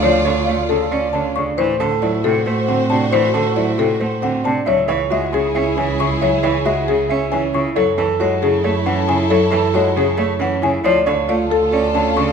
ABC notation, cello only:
X:1
M:7/8
L:1/8
Q:1/4=136
K:F#m
V:1 name="Cello" clef=bass
=F, D, A, C, C D, C, | E, D, F, =C, A, D, C, | E, D, F, =C, A, D, C, | F, E, G, C, C E, C, |
F, E, G, C, C E, C, | F, E, G, C, A, E, C, | F, E, G, C, A, E, C, | =F, D, A, z C D, C, |]